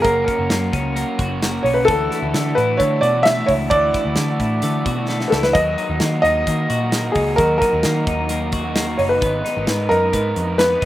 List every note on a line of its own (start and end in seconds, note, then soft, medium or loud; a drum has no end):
0.00 0.38 F#2 medium
0.00 0.37 C#3 medium
0.00 0.37 F#3 medium
0.00 0.25 C#4 medium
0.00 1.18 F#4 medium
0.00 0.23 A#4 loud
0.04 0.24 F#1 loud
0.04 0.48 A#3 medium
0.04 0.37 A#3 medium
0.04 0.37 C#4 medium
0.04 0.36 F#4 medium
0.04 kick loud
0.04 closed hi-hat medium
0.25 0.72 C#4 medium
0.25 1.14 A#4 medium
0.25 kick loud
0.29 closed hi-hat medium
0.37 0.48 F#1 loud
0.37 0.62 F#2 medium
0.37 0.62 C#3 medium
0.37 0.61 F#3 medium
0.37 0.60 A#3 medium
0.37 0.60 C#4 medium
0.37 0.59 F#4 medium
0.49 0.70 F#2 loud
0.49 0.95 A#3 medium
0.49 snare loud
0.49 closed hi-hat medium
0.60 0.94 F#3 soft
0.60 0.94 A#3 medium
0.60 0.94 C#4 medium
0.60 0.95 F#4 medium
0.73 1.03 C#2 loud
0.73 1.64 C#4 medium
0.73 kick loud
0.73 closed hi-hat medium
0.95 1.28 F#3 medium
0.95 1.28 A#3 medium
0.95 1.41 A#3 medium
0.95 1.28 C#4 medium
0.95 1.27 F#4 medium
0.95 closed hi-hat loud
1.19 1.58 F#1 loud
1.19 2.14 F#4 medium
1.19 kick loud
1.19 closed hi-hat medium
1.28 1.51 F#2 medium
1.28 1.51 C#3 medium
1.28 1.51 F#3 medium
1.28 1.51 A#3 medium
1.28 1.50 C#4 medium
1.28 1.50 F#4 medium
1.43 1.93 A#3 medium
1.43 snare loud
1.43 closed hi-hat loud
1.51 1.87 F#2 medium
1.51 1.87 C#3 medium
1.51 1.87 F#3 medium
1.51 1.87 A#3 medium
1.51 1.87 C#4 medium
1.51 1.87 F#4 medium
1.63 1.89 B1 medium
1.63 1.93 C#4 medium
1.63 1.76 C#5 medium
1.63 open hi-hat medium
1.74 1.87 B4 medium
1.85 2.08 D2 loud
1.85 2.22 D3 medium
1.85 3.70 E3 medium
1.85 2.22 E3 medium
1.85 2.21 A3 medium
1.85 2.21 D4 medium
1.85 2.21 F#4 loud
1.85 2.57 A4 loud
1.85 kick loud
1.85 closed hi-hat medium
2.11 2.55 E4 medium
2.11 snare soft
2.11 closed hi-hat medium
2.22 2.32 D2 loud
2.22 2.46 D3 medium
2.22 2.46 E3 medium
2.22 2.45 A3 medium
2.22 2.45 D4 medium
2.22 2.44 F#4 medium
2.34 2.54 D3 loud
2.34 2.78 A3 medium
2.34 snare loud
2.34 closed hi-hat medium
2.45 2.79 A3 soft
2.45 2.79 D4 soft
2.45 2.80 F#4 medium
2.55 2.77 A2 loud
2.55 3.47 E4 medium
2.55 2.79 B4 loud
2.55 closed hi-hat medium
2.77 2.99 D3 loud
2.77 3.13 E3 medium
2.77 3.24 A3 medium
2.77 3.13 A3 medium
2.77 3.13 D4 medium
2.77 3.12 F#4 medium
2.77 3.02 C#5 medium
2.77 kick medium
2.77 closed hi-hat medium
3.01 3.41 B2 medium
3.01 4.86 F#4 medium
3.01 3.25 D5 loud
3.01 closed hi-hat medium
3.13 3.37 D3 medium
3.13 3.36 E3 medium
3.13 3.36 A3 medium
3.13 3.36 D4 medium
3.13 3.36 F#4 medium
3.23 4.15 A3 medium
3.23 3.48 E5 loud
3.23 snare loud
3.23 closed hi-hat loud
3.37 3.70 D3 medium
3.37 3.70 E3 medium
3.37 3.70 A3 medium
3.37 3.71 D4 medium
3.37 3.71 F#4 medium
3.46 3.68 C#2 medium
3.46 3.92 E4 medium
3.46 3.52 C#5 loud
3.46 kick medium
3.46 open hi-hat medium
3.70 3.91 D2 loud
3.70 4.05 D3 medium
3.70 5.54 E3 medium
3.70 4.05 E3 medium
3.70 4.05 A3 medium
3.70 4.04 D4 medium
3.70 4.04 F#4 medium
3.70 5.33 D5 loud
3.70 kick loud
3.70 closed hi-hat medium
3.93 4.39 E4 medium
3.93 kick loud
3.93 snare soft
3.93 closed hi-hat medium
4.05 4.15 D2 loud
4.05 4.29 D3 medium
4.05 4.29 E3 medium
4.05 4.29 A3 medium
4.05 4.28 D4 medium
4.05 4.28 F#4 medium
4.16 4.36 D3 loud
4.16 4.62 A3 medium
4.16 snare loud
4.16 closed hi-hat medium
4.29 4.62 A3 soft
4.29 4.63 D4 medium
4.29 4.63 F#4 medium
4.40 4.59 A2 loud
4.40 5.31 E4 medium
4.40 kick medium
4.40 closed hi-hat medium
4.62 4.82 D3 loud
4.62 4.96 E3 medium
4.62 5.08 A3 medium
4.62 4.96 A3 medium
4.62 4.95 D4 medium
4.62 4.95 F#4 medium
4.62 closed hi-hat loud
4.86 5.25 B2 medium
4.86 6.69 F#4 medium
4.86 kick loud
4.86 closed hi-hat medium
4.96 5.21 D3 medium
4.96 5.20 E3 medium
4.96 5.20 A3 medium
4.96 5.20 D4 medium
4.96 5.19 F#4 medium
5.09 5.59 A3 medium
5.09 snare medium
5.20 5.54 D3 medium
5.20 5.54 E3 medium
5.20 5.55 A3 medium
5.20 5.55 D4 medium
5.20 5.55 F#4 medium
5.20 snare medium
5.28 5.43 A4 medium
5.28 5.31 B4 medium
5.32 5.52 C#2 medium
5.32 5.60 E4 medium
5.32 snare loud
5.43 5.55 B4 medium
5.43 snare medium
5.53 5.74 D#2 loud
5.53 5.89 D#3 medium
5.53 7.38 F#3 medium
5.53 5.89 F#3 medium
5.53 5.88 A#3 medium
5.53 5.88 D#4 medium
5.53 5.88 F#4 medium
5.53 5.97 D#5 loud
5.53 kick loud
5.53 closed hi-hat medium
5.78 6.23 D#4 medium
5.78 closed hi-hat medium
5.89 5.99 D#2 loud
5.89 6.13 D#3 medium
5.89 6.13 F#3 medium
5.89 6.12 A#3 medium
5.89 6.11 D#4 medium
5.89 6.10 F#4 medium
6.00 6.20 D#3 loud
6.00 6.47 A#3 medium
6.00 snare loud
6.00 closed hi-hat medium
6.11 6.45 A#3 medium
6.11 6.46 D#4 medium
6.11 6.46 F#4 medium
6.22 6.43 D#2 loud
6.22 7.15 D#4 medium
6.22 7.17 D#5 loud
6.22 closed hi-hat medium
6.46 6.66 D#3 loud
6.46 6.81 F#3 medium
6.46 6.80 A#3 medium
6.46 6.93 A#3 medium
6.46 6.80 D#4 medium
6.46 6.79 F#4 medium
6.46 kick medium
6.46 closed hi-hat medium
6.70 7.09 A#2 medium
6.70 8.52 F#4 medium
6.70 closed hi-hat medium
6.80 7.04 D#3 medium
6.80 7.04 F#3 medium
6.80 7.03 A#3 medium
6.80 7.03 D#4 medium
6.80 7.03 F#4 medium
6.92 7.84 A#3 medium
6.92 snare loud
6.92 closed hi-hat loud
7.04 7.38 D#3 medium
7.04 7.37 F#3 medium
7.04 7.38 A#3 medium
7.04 7.39 D#4 medium
7.04 7.38 F#4 medium
7.12 7.35 C#2 medium
7.12 7.61 D#4 medium
7.12 7.37 G#4 medium
7.12 kick medium
7.12 open hi-hat medium
7.36 7.58 D#2 loud
7.36 7.73 D#3 medium
7.36 7.73 F#3 medium
7.36 9.22 F#3 medium
7.36 7.73 A#3 medium
7.36 7.72 D#4 medium
7.36 7.56 A#4 loud
7.36 kick loud
7.36 closed hi-hat medium
7.40 7.71 F#4 medium
7.58 8.07 D#4 medium
7.58 8.47 A#4 medium
7.58 kick loud
7.58 snare soft
7.62 closed hi-hat medium
7.72 7.83 D#2 loud
7.72 7.96 D#3 medium
7.72 7.96 F#3 medium
7.72 7.95 A#3 medium
7.72 7.95 D#4 medium
7.72 7.93 F#4 medium
7.83 8.04 D#3 loud
7.83 8.30 A#3 medium
7.83 snare loud
7.83 closed hi-hat medium
7.94 8.29 A#3 medium
7.94 8.30 D#4 medium
7.94 8.29 F#4 medium
8.07 8.95 D#2 loud
8.07 8.98 D#4 medium
8.07 kick loud
8.07 closed hi-hat medium
8.29 8.64 F#3 medium
8.29 8.76 A#3 medium
8.29 8.64 A#3 medium
8.29 8.63 D#4 medium
8.29 8.63 F#4 medium
8.29 closed hi-hat loud
8.52 9.26 F#4 medium
8.52 kick loud
8.52 closed hi-hat medium
8.64 8.87 D#3 medium
8.64 8.87 F#3 medium
8.64 8.87 A#3 medium
8.64 8.86 D#4 medium
8.64 8.86 F#4 medium
8.76 9.21 A#3 medium
8.76 snare loud
8.76 closed hi-hat loud
8.87 9.21 D#3 medium
8.87 9.22 F#3 medium
8.87 9.22 A#3 medium
8.87 9.21 D#4 medium
8.87 9.22 F#4 medium
8.98 9.18 F#1 loud
8.98 9.44 D#4 medium
8.98 9.03 C#5 medium
8.98 open hi-hat medium
9.09 9.92 B4 medium
9.21 9.41 G#1 loud
9.21 9.56 G#2 medium
9.21 9.56 D#3 medium
9.21 9.56 G#3 medium
9.21 9.67 B3 medium
9.21 9.55 B3 medium
9.21 9.56 D#4 medium
9.21 kick loud
9.21 closed hi-hat medium
9.45 9.89 D#4 medium
9.45 snare soft
9.45 closed hi-hat medium
9.56 9.66 G#1 loud
9.56 9.80 G#2 medium
9.56 9.79 D#3 medium
9.56 9.79 G#3 medium
9.56 9.78 B3 medium
9.56 9.78 D#4 medium
9.56 9.77 A#4 medium
9.67 9.87 G#2 loud
9.67 10.12 B3 medium
9.67 snare loud
9.67 closed hi-hat medium
9.78 10.12 G#3 medium
9.78 10.12 B3 soft
9.78 10.13 D#4 medium
9.78 10.13 A#4 medium
9.89 10.10 F#2 loud
9.89 10.80 D#4 medium
9.89 10.60 A#4 loud
9.89 closed hi-hat medium
10.13 10.33 G#2 loud
10.13 10.47 G#3 medium
10.13 10.57 B3 medium
10.13 10.47 B3 medium
10.13 10.46 D#4 medium
10.13 10.46 A#4 medium
10.13 kick loud
10.13 closed hi-hat medium
10.36 10.75 F2 medium
10.36 closed hi-hat medium
10.47 10.70 G#2 medium
10.47 10.70 D#3 medium
10.47 10.70 G#3 medium
10.47 10.70 B3 medium
10.47 10.69 D#4 medium
10.47 10.70 A#4 medium
10.58 10.85 B3 medium
10.58 10.85 B4 loud
10.58 snare loud
10.58 closed hi-hat loud
10.70 10.85 G#2 medium
10.70 10.85 D#3 medium
10.70 10.85 G#3 medium
10.70 10.85 B3 medium
10.70 10.85 D#4 medium
10.81 10.85 D#4 medium
10.81 open hi-hat medium